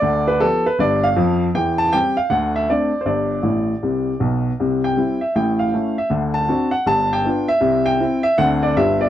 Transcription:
X:1
M:4/4
L:1/16
Q:"Swing" 1/4=158
K:C
V:1 name="Upright piano"
d2 B2 A2 B2 d2 f4 z2 | g2 a2 g2 f2 ^f2 e2 d3 c | d12 z4 | z2 g4 e2 g2 f4 e2 |
z2 a4 ^f2 a2 g4 e2- | e2 g4 e2 ^f2 d2 e2 d2 |]
V:2 name="Upright piano" clef=bass
[D,,D,]4 [F,B,G]4 [G,,,G,,]4 [F,,F,]4 | [E,,E,]4 [G,CG]4 [D,,D,]4 [A,CD]4 | [G,,,G,,]4 [A,,,A,,]4 [C,,C,]4 [B,,,B,,]4 | [C,,C,]4 [G,CE]4 [A,,,A,,]4 [A,^CE]4 |
[D,,D,]4 [CD^F]4 [G,,,G,,]4 [B,D=F]4 | [C,,C,]4 [CE]4 [D,,D,A,CD]4 [G,,,G,,G,B,F]4 |]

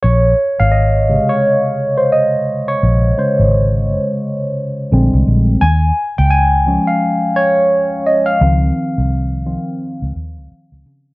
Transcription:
X:1
M:4/4
L:1/16
Q:"Swing 16ths" 1/4=86
K:Bbdor
V:1 name="Tine electric piano"
d3 f e3 d4 c e3 d- | d6- d z8 z | a3 g a3 f3 d4 e f- | f6- f z8 z |]
V:2 name="Tine electric piano" clef=bass
z6 [C,D,A,]8- [C,D,A,]2- | [C,D,A,]2 [D,A,c]2 z8 [=D,G,A,C]4 | z6 [F,A,D]2 z8 | [E,F,C]6 [E,F,C]2 z8 |]
V:3 name="Fingered electric bass" clef=bass
B,,,2 z A,,,4 z8 z | B,,,2 z A,,,4 z4 z B,,, C,, B,,,2 | E,,2 z D,,4 z8 z | D,,2 z C,,4 z2 D,, E,, D,, z D,, D,2 |]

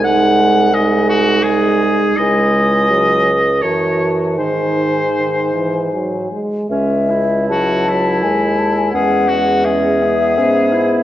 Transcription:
X:1
M:3/4
L:1/16
Q:1/4=83
K:C#m
V:1 name="Flute"
g4 g4 g4 | g6 z2 a4 | g8- g2 z2 | e4 a4 g2 a g |
f4 e8 |]
V:2 name="Oboe"
f4 d2 F2 G4 | d8 c2 z2 | ^B8 z4 | z4 F2 E6 |
G2 F2 G8 |]
V:3 name="Clarinet"
D4 D4 D4 | E6 z2 F4 | D8- D2 z2 | C2 E8- E2 |
C4 C2 B,2 C2 E2 |]
V:4 name="French horn" clef=bass
G,4 G,4 G,4 | G,4 F,2 z2 E,4 | D,4 D,2 E,2 F,2 G,2 | G,4 F,2 F,2 G,4 |
G,2 G,6 B,4 |]
V:5 name="Bassoon" clef=bass
^B,,,12 | C,,8 F,,4 | G,,8- G,,2 z2 | C,,8 D,,4 |
E,,8 G,,4 |]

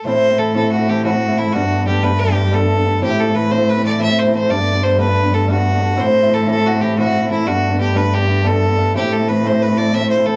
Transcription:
X:1
M:9/8
L:1/16
Q:3/8=121
K:Ador
V:1 name="Fiddle"
c4 A2 A2 F2 G2 F4 E2 | F4 G2 B2 G4 A6 | G2 A2 B2 c2 B2 d2 e2 c2 c2 | d4 c2 B4 A2 F6 |
c4 A2 A2 F2 G2 F4 E2 | F4 G2 B2 G4 A6 | G2 A2 B2 c2 B2 d2 e2 c2 A2 |]
V:2 name="Steel-string acoustic guitar"
[A,,E,A,CE] [A,CE]2 [A,CE] [E,A,CE]2 [A,,E,A,CE] [A,CE]2 [A,CE] [E,A,CE]2 [A,,E,A,CE] [A,CE]2 [A,CE] [E,A,CE]2 | [G,A,B,D] [A,B,D]2 [A,B,D] [G,A,B,D]2 [G,A,B,D] [A,B,D]2 [A,B,D] [G,A,B,D]2 [G,A,B,D] [A,B,D]2 [A,B,D] [G,A,B,D]2 | [A,,E,A,CE] [A,CE]2 [A,C] [E,A,CE]2 [A,,E,A,CE] [A,CE]2 [A,CE] [E,A,CE]2 [A,,E,A,CE] [A,CE]2 [A,CE] [E,A,CE]2 | [G,A,B,D] [A,B,D]2 [A,B,D] [G,A,B,D]2 [G,A,B,D] [A,B,D]2 [A,B,D] [G,A,B,D]2 [G,A,B,D] [A,B,D]2 [A,B,D] [G,A,B,D]2 |
[A,,E,A,CE] [A,CE]2 [A,CE] [E,A,CE]2 [A,,E,A,CE] [A,CE]2 [A,CE] [E,A,CE]2 [A,,E,A,CE] [A,CE]2 [A,CE] [E,A,CE]2 | [G,A,B,D] [A,B,D]2 [A,B,D] [G,A,B,D]2 [G,A,B,D] [A,D]2 [A,B,D] [G,A,B,D]2 [G,A,B,D] [A,B,D]2 [A,B,D] [G,A,B,D]2 | [A,,E,A,CE] [A,CE]2 [A,CE] [E,A,CE]2 [A,,E,A,CE] [A,CE]2 [A,CE] [E,A,CE]2 [A,,E,A,CE] [A,CE]2 [A,CE] [E,A,CE]2 |]
V:3 name="Cello" clef=bass
A,,16- A,,2 | G,,16- G,,2 | A,,16- A,,2 | G,,16- G,,2 |
A,,16- A,,2 | G,,16- G,,2 | A,,16- A,,2 |]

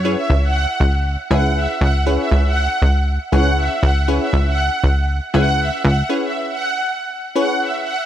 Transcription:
X:1
M:4/4
L:1/16
Q:1/4=119
K:C#phr
V:1 name="Supersaw synth"
z e z f3 z4 f2 e z f z | z e z f3 z4 f2 e z f z | z e z f3 z4 f2 e z f z | z e z f3 z4 f2 e z f z |]
V:2 name="Synth stab"
[CEGBc]6 z4 [CEGBe]4 z2 | [CEGBc]6 z4 [CEGBc]4 z2 | [CEGBc]6 z4 [CEGBe]4 z2 | [CEGBc]6 z4 [CEGBc]4 z2 |]
V:3 name="Analog synth bass" clef=bass
F,,2 C,,4 C,,4 C,,4 C,,2- | C,,2 C,,4 C,,4 C,,4 C,,2- | C,,2 C,,4 C,,4 C,,4 C,,2 | z16 |]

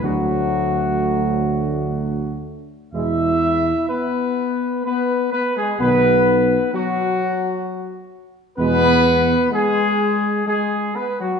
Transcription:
X:1
M:3/4
L:1/16
Q:1/4=63
K:E
V:1 name="Trumpet section"
F8- F2 z2 | e4 B4 B2 B G | B4 F6 z2 | B4 G4 G2 B F |]
V:2 name="French horn section"
F,8- F,2 z2 | E4 B,4 B,2 B, G, | B,4 F,6 z2 | B,4 G,4 G,2 B, F, |]
V:3 name="Trombone section" clef=bass
[=D,A,]8- [D,A,]2 z2 | [B,,G,]2 z8 z2 | [B,,D,]2 z8 z2 | [B,,G,]2 z8 z2 |]
V:4 name="Tuba" clef=bass
=D,,8- D,,2 z2 | E,,4 z8 | B,,,4 z8 | E,,4 z8 |]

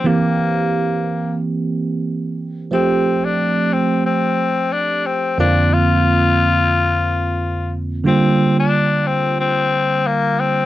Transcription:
X:1
M:4/4
L:1/16
Q:"Swing 16ths" 1/4=90
K:F
V:1 name="Tenor saxophone"
B,8 z8 | C3 D3 C2 C4 D2 C2 | D2 F12 z2 | C3 D3 C2 C4 B,2 C2 |]
V:2 name="Tine electric piano"
[E,B,CG]16 | [F,A,CG]16 | [F,,D,B,CF]16 | [D,G,B,F]16 |]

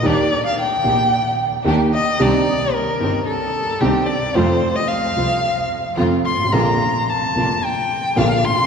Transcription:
X:1
M:4/4
L:1/16
Q:1/4=111
K:Bb
V:1 name="Violin"
d3 f g8 z2 e2 | d4 B4 A4 G2 d2 | c3 e f8 z2 c'2 | b4 a4 g4 f2 c'2 |]
V:2 name="String section"
[DEG]2 z4 [DEG]2 z4 [DEG]2 z2 | [CDE]2 z4 [CDE]2 z4 [CDE]2 z2 | [A,CF]2 z4 [A,CF]2 z4 [A,CF]2 z2 | [B,DF]2 z4 [B,DF]2 z4 [B,DF]2 z2 |]
V:3 name="Upright piano" clef=bass
[E,,E,B,DG]2 z4 [B,,,B,,E,B,DG]2 z4 [E,,E,B,DG]2 z2 | [C,,C,E,CDG]2 z4 [G,,,G,,E,CDG]2 z4 [C,,C,E,CDG]2 z2 | [F,,C,F,A,F]2 z4 [C,,C,F,A,F]2 z4 [F,,C,F,A,F]2 z/2 G,,,/2 _A,,,/2 =A,,,/2 | [B,,,B,,D,F,B,F]2 z4 [F,,,F,,D,F,B,F]2 z4 [B,,,B,,D,F,B,F]2 z/2 _A,,,/2 =A,,,/2 z/2 |]
V:4 name="Double bass" clef=bass
E,,2 z4 B,,,2 z4 E,,2 z2 | C,,2 z4 G,,,2 z4 C,,2 z2 | F,,2 z4 C,,2 z4 F,,2 _A,,,2 | B,,,2 z4 F,,,2 z4 B,,,2 A,,,2 |]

